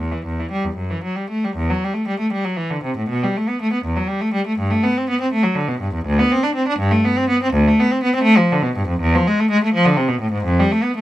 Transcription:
0.00 0.11 E2 medium
0.12 0.25 E3 soft
0.26 0.38 E2 soft
0.39 0.52 E3 soft
0.51 0.64 G3 medium
0.64 0.77 E2 soft
0.76 0.89 F#2 soft
0.90 1.04 E3 soft
1.04 1.17 F#3 soft
1.16 1.30 G3 soft
1.30 1.43 A3 soft
1.44 1.57 G3 soft
1.56 1.69 E2 medium
1.70 1.82 F#3 medium
1.84 1.95 G3 medium
1.94 2.07 A3 medium
2.08 2.20 G3 medium
2.20 2.32 A3 medium
2.33 2.45 G3 medium
2.45 2.58 F#3 soft
2.57 2.70 E3 medium
2.70 2.84 D3 medium
2.84 2.97 C3 medium
2.97 3.10 A2 medium
3.09 3.22 B2 medium
3.23 3.36 G3 medium
3.37 3.49 A3 medium
3.48 3.61 B3 medium
3.62 3.73 A3 medium
3.73 3.85 B3 medium
3.84 3.97 E2 medium
3.96 4.09 F#3 medium
4.08 4.21 G3 medium
4.21 4.34 A3 medium
4.34 4.46 G3 medium
4.47 4.59 A3 medium
4.59 4.71 G2 medium
4.71 4.83 A3 medium
4.83 4.95 B3 medium
4.97 5.09 C4 medium
5.10 5.20 B3 medium
5.21 5.32 C4 medium
5.33 5.44 A3 medium
5.43 5.56 F#3 medium
5.55 5.68 D3 medium
5.68 5.81 B2 medium
5.81 5.94 G2 medium
5.94 6.07 E2 medium
6.06 6.19 D2 medium
6.19 6.32 B3 medium
6.31 6.44 C4 medium
6.43 6.56 D4 medium
6.55 6.67 C4 medium
6.68 6.80 D4 medium
6.79 6.91 G2 medium
6.91 7.04 A3 medium
7.05 7.17 B3 medium
7.17 7.29 C4 medium
7.29 7.41 B3 medium
7.43 7.54 C4 medium
7.53 7.65 D2 medium
7.68 7.79 A3 medium
7.80 7.91 B3 medium
7.91 8.02 C4 medium
8.03 8.14 B3 medium
8.15 8.26 C4 medium
8.23 8.36 A3 medium
8.37 8.50 F3 medium
8.52 8.63 D3 medium
8.62 8.75 B2 medium
8.76 8.88 G2 medium
8.88 9.00 F2 medium
9.00 9.13 E2 medium
9.15 9.27 F3 medium
9.27 9.39 G#3 medium
9.39 9.51 A3 medium
9.51 9.62 G#3 medium
9.64 9.75 A3 medium
9.74 9.85 F3 medium
9.85 9.97 D3 medium
9.97 10.09 C3 medium
10.08 10.21 B2 medium
10.21 10.33 A2 medium
10.32 10.45 G#2 medium
10.44 10.57 F2 medium
10.60 10.71 G3 medium
10.72 10.84 A3 medium
10.83 10.96 B3 medium
10.96 11.01 A3 medium

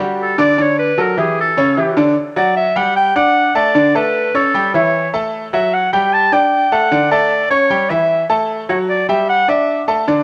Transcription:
0.00 0.31 G3 medium
0.00 0.31 F#4 medium
0.00 0.16 F#4 medium
0.00 0.32 G4 medium
0.22 0.39 A4 medium
0.38 0.54 D3 medium
0.38 0.55 D4 medium
0.38 0.55 D5 medium
0.38 0.63 D5 loud
0.58 0.91 D3 medium
0.58 0.91 D4 medium
0.58 0.78 C#5 medium
0.58 0.91 D5 medium
0.79 1.03 B4 loud
0.98 1.14 F#3 medium
0.98 1.14 F#4 medium
0.98 1.14 A4 medium
0.98 1.19 A#4 medium
1.17 1.50 E3 medium
1.17 1.50 E4 medium
1.17 1.50 G4 medium
1.17 1.37 G#4 medium
1.41 2.04 A4 medium
1.57 1.73 C#3 medium
1.57 1.74 C#4 medium
1.57 1.74 C#5 medium
1.77 1.93 E3 medium
1.77 1.93 E4 medium
1.77 1.94 G4 medium
1.97 2.13 D3 medium
1.97 2.13 D4 medium
1.97 2.13 D5 medium
2.36 2.69 F#3 medium
2.36 2.69 F#4 medium
2.36 2.55 D5 loud
2.36 2.69 F#5 medium
2.57 2.78 E5 loud
2.76 3.08 G3 medium
2.76 3.08 G4 medium
2.76 2.96 F#5 loud
2.76 3.09 G5 medium
2.96 3.14 G5 loud
3.16 3.48 D4 medium
3.16 3.48 D5 medium
3.16 3.53 F#5 loud
3.16 3.48 D6 medium
3.55 3.71 A3 medium
3.55 3.71 A4 medium
3.55 3.97 D5 medium
3.55 3.71 A5 medium
3.75 3.91 D3 medium
3.75 3.91 D4 medium
3.75 3.91 D5 medium
3.95 4.27 A3 medium
3.95 4.27 A4 medium
3.95 4.37 B4 medium
3.95 4.27 A5 medium
4.34 4.50 C#4 medium
4.34 4.74 A4 medium
4.34 4.51 C#5 medium
4.34 4.51 C#6 medium
4.54 4.70 G3 medium
4.54 4.70 G4 medium
4.54 4.71 G5 medium
4.74 5.06 E3 medium
4.74 5.07 E4 medium
4.74 5.11 C#5 medium
4.74 5.07 E5 medium
5.13 5.46 A3 medium
5.13 5.46 A4 medium
5.13 5.46 A5 medium
5.53 5.85 F#3 medium
5.53 5.86 F#4 medium
5.53 5.75 E5 loud
5.53 5.86 F#5 medium
5.74 5.93 F#5 loud
5.93 6.25 G3 medium
5.93 6.25 G4 medium
5.93 6.15 G5 loud
5.93 6.25 G5 medium
6.13 6.34 A5 loud
6.32 6.64 D4 medium
6.32 6.65 D5 medium
6.32 6.74 G5 loud
6.32 6.65 D6 medium
6.72 6.88 A3 medium
6.72 6.88 A4 medium
6.72 7.11 F#5 loud
6.72 6.88 A5 medium
6.92 7.08 D3 medium
6.92 7.08 D4 medium
6.92 7.08 D5 medium
7.11 7.43 A3 medium
7.11 7.44 A4 medium
7.11 7.48 D5 medium
7.11 7.44 A5 medium
7.50 7.67 C#4 medium
7.50 7.91 C#5 loud
7.50 7.67 C#5 medium
7.50 7.67 C#6 medium
7.70 7.86 G3 medium
7.70 7.87 G4 medium
7.70 7.87 G5 medium
7.90 8.22 E3 medium
7.90 8.23 E4 medium
7.90 8.29 E5 medium
7.90 8.23 E5 medium
8.30 8.62 A3 medium
8.30 8.62 A4 medium
8.30 8.62 A5 medium
8.69 9.01 F#3 medium
8.69 9.02 F#4 medium
8.69 8.78 C#5 medium
8.69 9.02 F#5 medium
8.89 9.07 D5 medium
9.09 9.41 G3 medium
9.09 9.41 G4 medium
9.09 9.27 E5 medium
9.09 9.41 G5 medium
9.29 9.47 F#5 loud
9.48 9.81 D4 medium
9.48 9.81 D5 medium
9.48 9.86 E5 medium
9.48 9.81 D6 medium
9.88 10.04 A3 medium
9.88 10.04 A4 medium
9.88 10.04 A5 medium
10.08 10.23 D3 medium
10.08 10.23 D4 medium
10.08 10.23 D5 medium

